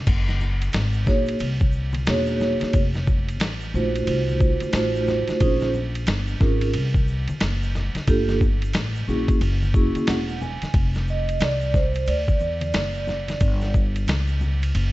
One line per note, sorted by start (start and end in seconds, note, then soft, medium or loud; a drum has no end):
0.07 0.71 F#1 medium
0.07 kick loud
0.07 crash medium
0.07 ride medium
0.07 shaker medium
0.27 snare soft
0.27 high conga soft
0.27 shaker soft
0.41 low conga medium
0.41 shaker soft
0.61 ride medium
0.61 shaker medium
0.72 1.06 G#1 medium
0.72 snare loud
0.72 hi-hat pedal soft
0.72 ride medium
0.72 shaker medium
0.93 shaker soft
1.06 1.39 A#1 medium
1.06 1.33 A#3 medium
1.06 1.33 D#4 medium
1.06 1.33 F#4 medium
1.06 1.33 G#4 medium
1.06 1.33 C#5 medium
1.06 kick medium
1.06 snare soft
1.06 high conga soft
1.06 low conga medium
1.06 shaker soft
1.26 ride medium
1.26 shaker soft
1.39 2.04 C2 medium
1.39 ride medium
1.39 shaker medium
1.60 kick medium
1.60 high conga medium
1.60 shaker soft
1.72 shaker soft
1.93 ride medium
1.93 high conga medium
1.93 shaker medium
2.06 2.59 E1 medium
2.06 2.74 A#3 medium
2.06 2.74 D#4 medium
2.06 2.75 F#4 medium
2.06 2.75 G#4 medium
2.06 2.75 C#5 medium
2.06 snare loud
2.06 hi-hat pedal soft
2.06 ride medium
2.06 shaker medium
2.26 shaker soft
2.40 snare soft
2.40 low conga medium
2.40 shaker soft
2.60 muted upright bass stroke soft
2.60 snare soft
2.60 ride medium
2.60 high conga medium
2.60 shaker soft
2.73 3.40 F1 loud
2.73 kick loud
2.73 ride medium
2.73 shaker medium
2.94 snare soft
2.94 high conga soft
2.94 shaker soft
3.07 kick medium
3.07 low conga medium
3.07 shaker soft
3.29 ride medium
3.29 shaker medium
3.40 3.72 A1 loud
3.40 snare loud
3.40 hi-hat pedal medium
3.40 ride medium
3.40 shaker medium
3.61 shaker medium
3.74 4.06 A#1 loud
3.74 4.69 A3 medium
3.74 4.69 D#4 medium
3.74 4.69 F4 medium
3.74 4.70 F#4 medium
3.74 4.70 C5 medium
3.74 high conga soft
3.74 low conga medium
3.74 shaker soft
3.95 ride medium
3.95 shaker soft
4.07 4.59 C2 medium
4.07 ride medium
4.07 shaker medium
4.29 high conga soft
4.29 shaker soft
4.40 kick medium
4.40 shaker soft
4.60 muted upright bass stroke medium
4.60 ride medium
4.60 high conga medium
4.60 shaker medium
4.73 5.25 A1 medium
4.73 5.41 A3 medium
4.73 5.41 D#4 medium
4.73 5.40 F4 medium
4.73 5.42 F#4 medium
4.73 5.41 C5 medium
4.73 snare loud
4.73 hi-hat pedal soft
4.73 ride medium
4.73 shaker medium
4.95 shaker soft
5.08 snare soft
5.08 low conga medium
5.08 shaker soft
5.28 muted upright bass stroke soft
5.28 snare soft
5.28 ride medium
5.28 high conga medium
5.28 shaker soft
5.40 6.04 A#1 loud
5.40 5.67 C#4 medium
5.40 5.67 D#4 medium
5.40 5.67 F4 medium
5.40 5.67 G#4 medium
5.40 5.67 C5 medium
5.40 kick medium
5.40 ride medium
5.40 shaker medium
5.60 snare soft
5.60 high conga soft
5.60 shaker soft
5.74 low conga medium
5.74 shaker soft
5.95 ride medium
5.95 shaker soft
6.06 6.39 G1 medium
6.06 snare loud
6.06 hi-hat pedal medium
6.06 ride medium
6.06 shaker medium
6.27 shaker soft
6.40 6.72 G#1 medium
6.40 6.66 C#4 medium
6.40 6.67 D#4 medium
6.40 6.67 F4 medium
6.40 6.67 G#4 medium
6.40 6.67 A#4 medium
6.40 kick medium
6.40 snare soft
6.40 high conga soft
6.40 low conga medium
6.40 shaker soft
6.61 ride medium
6.61 shaker soft
6.74 7.26 C2 loud
6.74 ride medium
6.74 shaker medium
6.94 kick medium
6.94 high conga medium
6.94 shaker soft
7.08 shaker soft
7.28 muted upright bass stroke soft
7.28 ride medium
7.28 high conga medium
7.28 shaker medium
7.40 7.93 F#1 medium
7.40 snare loud
7.40 hi-hat pedal medium
7.40 ride medium
7.40 shaker medium
7.63 shaker medium
7.75 snare soft
7.75 low conga medium
7.75 shaker soft
7.95 muted upright bass stroke soft
7.95 snare soft
7.95 ride medium
7.95 high conga medium
7.95 shaker soft
8.07 8.71 G1 loud
8.07 8.33 A#3 medium
8.07 8.34 D4 medium
8.07 8.34 F4 medium
8.07 8.34 G4 medium
8.07 8.34 A4 medium
8.07 kick loud
8.07 ride medium
8.07 shaker medium
8.29 snare soft
8.29 high conga soft
8.29 shaker soft
8.41 kick medium
8.41 low conga medium
8.41 shaker soft
8.62 ride medium
8.62 shaker medium
8.73 9.06 A1 medium
8.73 snare loud
8.73 hi-hat pedal medium
8.73 ride medium
8.73 shaker medium
8.96 shaker soft
9.08 9.39 A#1 medium
9.08 9.33 A#3 medium
9.08 9.33 C#4 medium
9.08 9.34 E4 medium
9.08 9.34 F#4 medium
9.08 9.34 G#4 medium
9.08 high conga soft
9.08 low conga medium
9.08 shaker soft
9.28 kick medium
9.28 ride medium
9.28 shaker soft
9.41 9.92 F#1 loud
9.41 ride medium
9.41 shaker medium
9.63 high conga soft
9.63 shaker soft
9.74 10.16 A#3 medium
9.74 10.16 C#4 medium
9.74 10.16 E4 medium
9.74 10.17 F#4 medium
9.74 10.17 G#4 medium
9.74 kick medium
9.74 shaker soft
9.95 muted upright bass stroke soft
9.95 ride medium
9.95 high conga medium
9.95 shaker medium
10.07 10.59 E1 medium
10.07 10.39 F#5 medium
10.07 snare loud
10.07 hi-hat pedal medium
10.07 ride medium
10.07 shaker medium
10.29 shaker soft
10.41 10.72 G#5 medium
10.41 low conga medium
10.41 shaker soft
10.62 muted upright bass stroke soft
10.62 snare soft
10.62 ride medium
10.62 high conga medium
10.62 shaker soft
10.74 11.37 F1 loud
10.74 kick loud
10.74 ride medium
10.74 shaker medium
10.94 snare soft
10.94 shaker soft
11.08 11.40 D#5 medium
11.08 shaker soft
11.28 ride medium
11.28 shaker soft
11.40 12.04 C2 medium
11.40 11.76 D5 loud
11.40 snare loud
11.40 hi-hat pedal medium
11.40 ride medium
11.40 shaker medium
11.61 shaker soft
11.74 12.09 C5 medium
11.74 kick medium
11.74 snare soft
11.74 high conga soft
11.74 low conga medium
11.74 shaker soft
11.94 ride medium
11.94 shaker soft
12.07 12.39 D2 medium
12.07 13.70 D5 medium
12.07 ride medium
12.07 shaker medium
12.28 kick medium
12.28 high conga soft
12.28 shaker soft
12.40 12.72 E2 medium
12.40 shaker soft
12.61 ride medium
12.61 high conga medium
12.61 shaker medium
12.74 13.37 F#1 medium
12.74 snare loud
12.74 hi-hat pedal medium
12.74 ride medium
12.74 shaker medium
12.95 shaker soft
13.07 snare soft
13.07 low conga medium
13.07 shaker soft
13.28 snare soft
13.28 ride medium
13.28 high conga medium
13.28 shaker soft
13.40 14.04 G1 loud
13.40 kick loud
13.40 ride medium
13.40 shaker medium
13.61 snare soft
13.61 shaker soft
13.74 kick medium
13.74 shaker soft
13.95 ride medium
13.95 shaker medium
14.07 14.71 C#2 medium
14.07 snare loud
14.07 hi-hat pedal medium
14.07 ride medium
14.07 shaker medium
14.28 shaker soft
14.41 high conga soft
14.41 low conga medium
14.41 shaker soft
14.62 ride medium
14.62 shaker soft
14.75 14.92 F#1 loud
14.75 ride medium
14.75 shaker medium